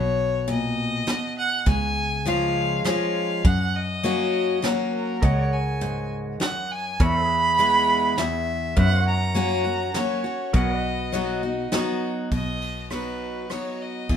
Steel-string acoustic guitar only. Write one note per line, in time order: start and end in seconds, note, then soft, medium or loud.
0.00 1.02 B2 medium
0.48 1.05 A#2 medium
1.07 1.64 B2 medium
1.66 2.79 C#3 loud
2.25 2.82 F3 medium
2.25 2.83 G#3 medium
2.25 2.83 C#4 medium
2.25 2.83 F4 loud
2.84 3.41 F3 medium
2.84 3.42 G#3 medium
2.84 3.42 C#4 loud
2.84 3.43 F4 loud
3.45 4.57 F#2 loud
4.03 4.60 F#3 medium
4.03 4.60 A#3 loud
4.03 4.61 C#4 loud
4.03 4.61 F#4 medium
4.62 5.19 F#3 medium
4.62 5.20 A#3 medium
4.62 5.20 C#4 medium
4.62 5.20 F#4 loud
5.23 6.35 C#3 loud
5.81 6.38 G#2 medium
6.40 6.96 F#2 medium
7.00 8.12 E2 medium
7.58 8.15 E3 medium
7.58 8.15 G#3 medium
7.58 8.15 B3 medium
7.58 8.16 E4 loud
8.18 8.74 E2 medium
8.77 9.89 F#2 medium
9.34 9.64 F#3 medium
9.34 9.64 A#3 loud
9.34 9.64 C#4 loud
9.34 9.63 F#4 loud
9.64 9.94 C#4 soft
9.64 9.93 F#4 medium
9.95 10.23 F#3 medium
9.95 10.24 A#3 medium
9.95 10.24 C#4 loud
9.95 10.23 F#4 loud
10.24 10.54 C#4 medium
10.24 10.53 F#4 medium
10.54 11.66 B2 medium
11.12 11.41 F#3 medium
11.12 11.42 B3 medium
11.12 11.42 D#4 medium
11.12 11.42 F#4 loud
11.43 11.72 D#4 soft
11.43 11.71 F#4 medium
11.72 12.28 F#3 medium
11.72 12.29 B3 medium
11.72 12.29 D#4 loud
11.72 12.29 F#4 loud
12.32 13.44 B2 medium
12.90 13.47 F#3 medium
12.90 13.47 B3 medium
12.90 13.47 D#4 medium
12.90 13.48 F#4 medium
13.50 14.06 F#3 soft
13.50 14.07 B3 medium
13.50 14.07 D#4 soft
13.50 14.07 F#4 medium
14.09 14.17 E2 medium